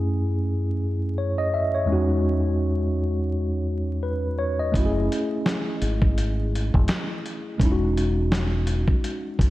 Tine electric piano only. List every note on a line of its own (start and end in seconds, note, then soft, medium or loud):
0.00 1.83 F#2 medium
0.00 1.84 A3 medium
0.00 1.85 C#4 medium
0.00 1.86 E4 medium
0.00 1.87 G#4 medium
1.18 1.37 C#5 medium
1.38 1.52 D#5 medium
1.54 1.73 E5 medium
1.75 2.08 C#5 medium
1.86 4.69 E2 medium
1.86 4.70 G#3 medium
1.86 4.70 C#4 medium
1.90 4.71 D#4 medium
1.90 4.72 F#4 medium
4.03 4.37 B4 medium
4.39 4.58 C#5 medium
4.59 4.93 D#5 medium
4.72 7.55 A3 medium
4.72 7.56 C#4 medium
4.76 7.57 E4 medium
4.76 4.84 F#4 medium
4.85 7.61 G#4 medium
7.58 9.50 G#3 medium
7.58 9.50 C#4 medium
7.63 9.50 D#4 medium
7.63 7.70 E4 medium
7.72 9.50 F#4 medium